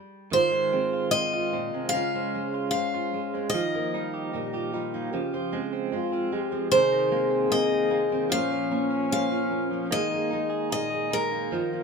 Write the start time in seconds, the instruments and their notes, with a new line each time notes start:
Already playing: steel-string acoustic guitar G3 G4
0.31 steel-string acoustic guitar G#2 F4 C5, clean electric guitar D#3, french horn F4
0.52 clean electric guitar G#3, steel-string acoustic guitar F4
0.73 steel-string acoustic guitar G#3 C4, clean electric guitar C4
0.93 clean electric guitar F4
1.11 steel-string acoustic guitar D#3 C5 D#5, clean electric guitar C4
1.33 clean electric guitar F4, steel-string acoustic guitar F4
1.53 steel-string acoustic guitar A#2, clean electric guitar C4
1.74 steel-string acoustic guitar C3, clean electric guitar G#3
1.89 steel-string acoustic guitar F5
1.93 steel-string acoustic guitar C#3 F4, clean electric guitar G#3, french horn C#4
2.14 clean electric guitar G#3, steel-string acoustic guitar C5
2.35 steel-string acoustic guitar G#3
2.54 clean electric guitar F4
2.71 steel-string acoustic guitar G#2 C5 F5
2.94 clean electric guitar F4, steel-string acoustic guitar F4
3.13 steel-string acoustic guitar G#3
3.34 clean electric guitar G#3, steel-string acoustic guitar C4
3.50 french horn D#4, steel-string acoustic guitar D#5
3.54 steel-string acoustic guitar D#3 F4, clean electric guitar F3
3.74 clean electric guitar A#3, steel-string acoustic guitar A#4
3.94 steel-string acoustic guitar G3 D#4, clean electric guitar D#4
4.14 clean electric guitar G4
4.33 steel-string acoustic guitar A#2 A#4, clean electric guitar D#4, french horn G4
4.54 steel-string acoustic guitar F4, clean electric guitar G4
4.74 steel-string acoustic guitar G3, clean electric guitar D#4, french horn F4
4.94 clean electric guitar A#3, steel-string acoustic guitar D#4
5.12 steel-string acoustic guitar C#3 F4, clean electric guitar F3, french horn G4
5.33 clean electric guitar F3, steel-string acoustic guitar C5
5.52 steel-string acoustic guitar G#3 C4, clean electric guitar G#3
5.73 clean electric guitar C4
5.92 steel-string acoustic guitar G#2 C5, clean electric guitar G#3, french horn F4
6.12 clean electric guitar C4, steel-string acoustic guitar F4
6.32 steel-string acoustic guitar G#3, clean electric guitar G#3, french horn G4
6.52 clean electric guitar F3, steel-string acoustic guitar C4
6.71 steel-string acoustic guitar C3 D#4 C5, clean electric guitar D#3, french horn G#4
6.92 clean electric guitar D#3, steel-string acoustic guitar A#4
7.11 steel-string acoustic guitar G#3 C4, clean electric guitar A#3
7.30 clean electric guitar C4
7.50 steel-string acoustic guitar C3 A#4 D#5, clean electric guitar A#3
7.71 clean electric guitar C4, steel-string acoustic guitar D#4
7.91 steel-string acoustic guitar G#3, clean electric guitar A#3
8.10 clean electric guitar D#3, steel-string acoustic guitar C4
8.30 steel-string acoustic guitar A#2 A#3 C#4 F4 F5, clean electric guitar F3, french horn C#4
8.34 steel-string acoustic guitar C5
8.50 clean electric guitar F3, steel-string acoustic guitar C5
8.71 steel-string acoustic guitar A#3 C#4
8.90 clean electric guitar C#4
9.11 steel-string acoustic guitar F3 C5 F5
9.31 clean electric guitar C#4, steel-string acoustic guitar F4
9.51 steel-string acoustic guitar A#3
9.71 clean electric guitar F3, steel-string acoustic guitar C#4
9.91 steel-string acoustic guitar D#3 G#3 D#4 D#5, clean electric guitar A#3, french horn D#4
9.95 steel-string acoustic guitar G#4
10.11 clean electric guitar A#3, steel-string acoustic guitar G#4
10.31 steel-string acoustic guitar G#3 D#4, clean electric guitar D#4
10.50 clean electric guitar G#4
10.70 steel-string acoustic guitar A#2 G#4 D#5, clean electric guitar D#4
10.90 clean electric guitar G#4, steel-string acoustic guitar G#4
11.11 steel-string acoustic guitar G#3 A#4, clean electric guitar D#4
11.31 clean electric guitar A#3, steel-string acoustic guitar D#4
11.50 steel-string acoustic guitar D#3, clean electric guitar F3, french horn F4
11.54 steel-string acoustic guitar F4
11.73 clean electric guitar A#3, steel-string acoustic guitar F4